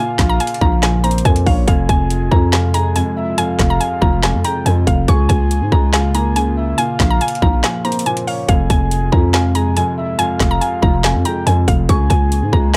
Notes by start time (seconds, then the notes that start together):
Already playing: A#2 C#3 A#3 F4 F5 G#5
0.19 A#1, kick, snare, clap, closed hi-hat
0.29 A#5
0.40 G#5, closed hi-hat
0.47 closed hi-hat
0.54 closed hi-hat
0.61 A#1 F3 A#5, kick
0.83 A#2 G#5, snare, clap, closed hi-hat
1.04 A#3 C5 A#5, closed hi-hat
1.11 closed hi-hat
1.18 closed hi-hat
1.25 F2 A#2 G#5, kick, closed hi-hat
1.36 closed hi-hat
1.46 A#1 C#5 F5, kick, open hi-hat
1.68 F1 F2 C3 G#3 F4 F5 G#5, kick, closed hi-hat
1.89 F1 G#5, kick, closed hi-hat
2.10 closed hi-hat
2.31 F2 F3 A#5, kick
2.53 F2 F5 G#5, snare, clap, closed hi-hat
2.74 G#3 G#5 A#5, closed hi-hat
2.96 F2 G#5, closed hi-hat
3.17 E5
3.38 F2 F5 G#5, closed hi-hat
3.59 F1, kick, snare, clap, closed hi-hat
3.70 A#5
3.80 G#5, closed hi-hat
4.02 F1 F3 A#5, kick
4.23 F2 G#5, snare, clap, closed hi-hat
4.34 F2
4.44 G#3 G5 A#5, closed hi-hat
4.66 F2 G#5, closed hi-hat
4.87 F1 F5, kick, closed hi-hat
5.08 C#2 C#3 A#3 G#5 C#6, kick, closed hi-hat
5.29 C#2 G#5, kick, closed hi-hat
5.51 closed hi-hat
5.61 G#2
5.72 C#2 G#3 A#5, kick
5.93 C#3 F5 G#5, snare, clap, closed hi-hat
6.15 A#3 G#5 A#5, closed hi-hat
6.36 C#3 G#5, closed hi-hat
6.57 E5
6.78 A#2 F5 G#5, closed hi-hat
7.00 A#1, kick, snare, clap, closed hi-hat
7.10 A#5
7.21 G#5, closed hi-hat
7.28 closed hi-hat
7.35 closed hi-hat
7.42 A#1 F3 A#5, kick
7.64 A#2 G#5, snare, clap, closed hi-hat
7.85 A#3 C5 A#5, closed hi-hat
7.92 closed hi-hat
7.99 closed hi-hat
8.06 A#2 G#5, closed hi-hat
8.17 closed hi-hat
8.27 C#5 F5, open hi-hat
8.48 F1 F2 C3 G#3 F4 F5 G#5, kick, closed hi-hat
8.70 F1 G#5, kick, closed hi-hat
8.91 closed hi-hat
9.12 F2 F3 A#5, kick
9.34 F2 F5 G#5, snare, clap, closed hi-hat
9.55 G#3 G#5 A#5, closed hi-hat
9.76 F2 G#5, closed hi-hat
9.98 E5
10.18 F2 F5 G#5, closed hi-hat
10.40 F1, kick, snare, clap, closed hi-hat
10.51 A#5
10.61 G#5, closed hi-hat
10.82 F1 F3 A#5, kick
11.04 F2 G#5, snare, clap, closed hi-hat
11.15 F2
11.25 G#3 G5 A#5, closed hi-hat
11.47 F2 G#5, closed hi-hat
11.68 F1 F5, kick, closed hi-hat
11.89 C#2 C#3 A#3 F4 G#5 C#6, kick, closed hi-hat
12.10 C#2 G#5, kick, closed hi-hat
12.32 closed hi-hat
12.42 G#2
12.53 C#2 G#3 A#5, kick
12.74 C#3 G#5